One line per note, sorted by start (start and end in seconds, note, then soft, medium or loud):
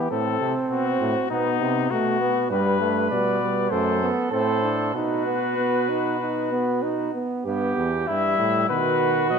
0.00 0.10 E3 medium
0.11 0.40 A2 medium
0.11 1.29 C4 medium
0.11 0.55 A4 medium
0.41 0.54 C3 medium
0.71 1.00 B2 medium
0.71 1.30 F#4 medium
1.01 1.14 A2 medium
1.31 1.62 B2 medium
1.31 1.90 B3 medium
1.31 1.92 D#4 loud
1.61 1.90 C3 medium
1.90 2.52 B2 medium
1.90 2.21 A3 medium
1.90 2.50 F#4 loud
2.21 2.50 B3 medium
2.51 3.11 G2 medium
2.51 2.80 G3 medium
2.51 3.67 B4 medium
2.51 3.10 B4 medium
2.81 3.13 A3 medium
3.10 3.70 B2 medium
3.10 3.41 G3 medium
3.10 3.72 D5 medium
3.42 3.71 G3 medium
3.71 4.10 F#2 medium
3.71 4.01 A3 medium
3.71 4.31 A4 medium
3.71 4.10 C5 medium
4.02 4.32 B3 medium
4.32 4.91 A2 medium
4.32 4.65 C4 medium
4.32 4.93 A4 medium
4.32 4.90 C5 medium
4.64 4.95 D4 medium
4.94 7.10 B2 medium
4.94 5.26 D#4 medium
4.94 7.11 F#4 medium
4.94 7.10 B4 medium
5.27 5.57 B3 medium
5.58 5.91 B3 medium
5.89 6.20 D#4 medium
6.20 6.51 D#4 medium
6.52 6.84 B3 medium
6.83 7.14 D#4 medium
7.15 7.45 B3 medium
7.45 7.75 G2 medium
7.45 7.91 B3 medium
7.45 8.09 G4 medium
7.77 8.07 E2 medium
8.07 8.38 G2 medium
8.07 8.68 G3 medium
8.07 8.69 E4 medium
8.07 8.65 E5 loud
8.39 8.69 A2 medium
8.69 9.29 B2 medium
8.69 9.32 D#3 medium
8.69 9.39 F#4 medium
8.69 9.29 B4 loud
9.30 9.39 B2 medium
9.30 9.39 F#3 medium
9.30 9.39 D#5 medium